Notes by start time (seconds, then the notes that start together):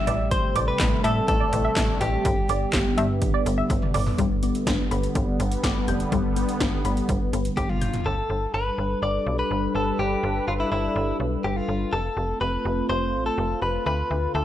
Already playing: G3 E5
0.07 A1 C3 A3 D5, closed hi-hat
0.31 C5, kick, closed hi-hat
0.56 A1 D5, closed hi-hat
0.68 B4
0.80 A1, kick, snare, clap, closed hi-hat
1.04 A2 A4 E5, closed hi-hat
1.28 A1 A4, kick, closed hi-hat
1.40 D5
1.52 A1, closed hi-hat
1.65 E5
1.76 A1, kick, snare, clap, closed hi-hat
2.01 A1 G4, closed hi-hat
2.25 G1 D3 B3, kick, closed hi-hat
2.49 G1 D5, closed hi-hat
2.73 G1, kick, snare, clap, closed hi-hat
2.98 G2 E5, closed hi-hat
3.22 G1, kick, closed hi-hat
3.34 D5
3.46 G1, closed hi-hat
3.58 E5
3.70 G1, kick, closed hi-hat, high tom
3.82 mid tom
3.94 G1 D5, mid tom, open hi-hat
4.06 floor tom
4.18 G1 D3 G3 B3, kick, closed hi-hat
4.43 B3, closed hi-hat
4.55 closed hi-hat
4.67 G1 D4, kick, snare, closed hi-hat
4.91 G1 B5, closed hi-hat
5.03 closed hi-hat
5.15 G1, kick, closed hi-hat
5.40 G1 B3, closed hi-hat
5.52 closed hi-hat
5.64 G1 D6, kick, snare, closed hi-hat
5.88 F1 G6, closed hi-hat
6.00 closed hi-hat
6.12 G1 G3, kick, closed hi-hat
6.36 B3, closed hi-hat
6.49 closed hi-hat
6.60 G1 D4, kick, snare, closed hi-hat
6.85 G1 B5, closed hi-hat
6.97 closed hi-hat
7.09 G1, kick, closed hi-hat
7.33 G1 B3, closed hi-hat
7.45 closed hi-hat
7.57 G1 G4 D6, kick, closed hi-hat, high tom
7.69 F4, mid tom
7.81 F1 G6, closed hi-hat, mid tom
7.94 closed hi-hat, floor tom
8.06 G1 G3 D4 A4 B4
8.30 G1
8.54 G1 B4
8.78 G1
9.02 G1 D5
9.26 B1
9.39 B4
9.51 G1
9.75 G1 A4
9.99 G1 G4
10.23 G1
10.48 G1 F4
10.60 E4
10.72 G1 E4
10.96 G1
11.20 B1
11.44 G1 G4
11.56 F4
11.68 G1
11.92 F1 A3 C4 F4 A4
12.17 F1
12.41 F1 B4
12.65 F1
12.89 F1 C5
13.14 A1
13.26 A4
13.38 F1
13.62 F1 B4
13.86 D2 D3 D4 A4 B4
14.11 D2
14.35 D2 A4